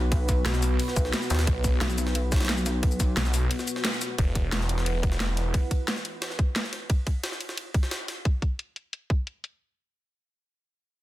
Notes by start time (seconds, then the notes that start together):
Already playing: B1 B3 F#4 B4
0.12 kick, closed hi-hat, ride
0.29 kick, snare, closed hi-hat, ride, shaker
0.46 B1, snare, closed hi-hat, ride
0.54 snare, shaker
0.62 snare, open hi-hat, ride, shaker
0.79 closed hi-hat, open hi-hat
0.88 snare
0.96 B1, kick, closed hi-hat, ride, shaker
1.05 snare
1.13 snare, closed hi-hat, ride
1.22 snare, shaker
1.30 D#2, snare, closed hi-hat, ride, shaker
1.35 snare, ride
1.39 snare, ride
1.47 B1, kick, closed hi-hat, ride
1.64 kick, snare, closed hi-hat, ride, shaker
1.81 B1, snare, closed hi-hat, ride
1.90 snare, shaker
1.98 snare, closed hi-hat, ride, shaker
2.07 snare
2.15 closed hi-hat, ride
2.32 kick, snare, closed hi-hat, ride, shaker
2.36 snare, ride
2.40 snare, ride
2.45 snare, ride
2.49 snare, closed hi-hat, ride
2.58 shaker
2.66 snare, closed hi-hat, ride, shaker
2.83 kick, closed hi-hat, ride
2.91 shaker
3.00 kick, snare, closed hi-hat, ride, shaker
3.17 B1, snare, closed hi-hat, ride
3.25 snare, shaker
3.34 snare, open hi-hat, ride, shaker
3.51 closed hi-hat, ride
3.59 snare, shaker
3.68 closed hi-hat, ride, shaker
3.76 snare
3.85 snare, closed hi-hat, ride
3.93 snare, shaker
4.02 snare, closed hi-hat, ride, shaker
4.18 E1 E4 B4 F#5, kick, closed hi-hat, ride
4.35 kick, closed hi-hat, ride
4.52 E1, snare, closed hi-hat, ride
4.61 snare
4.69 closed hi-hat, ride
4.78 snare
4.86 closed hi-hat, ride
5.03 kick, closed hi-hat, ride
5.12 snare
5.20 snare, closed hi-hat, ride
5.37 snare, closed hi-hat, ride
5.54 kick, closed hi-hat, ride
5.71 kick, closed hi-hat, ride
5.88 snare, closed hi-hat, ride
5.96 snare
6.05 closed hi-hat, ride
6.22 snare, closed hi-hat, ride
6.30 snare
6.39 kick, closed hi-hat
6.56 snare, closed hi-hat, ride
6.64 snare
6.73 snare, closed hi-hat, ride
6.90 kick, closed hi-hat, ride
7.07 kick, closed hi-hat, ride
7.24 snare, closed hi-hat, ride
7.32 snare
7.40 closed hi-hat, ride
7.49 snare
7.57 closed hi-hat, ride
7.74 kick, closed hi-hat, ride
7.83 snare
7.91 snare, closed hi-hat, ride
8.08 snare, closed hi-hat, ride
8.25 kick, closed hi-hat
8.42 kick, closed hi-hat
8.59 closed hi-hat
8.76 closed hi-hat
8.93 closed hi-hat
9.10 kick, closed hi-hat
9.27 closed hi-hat
9.44 closed hi-hat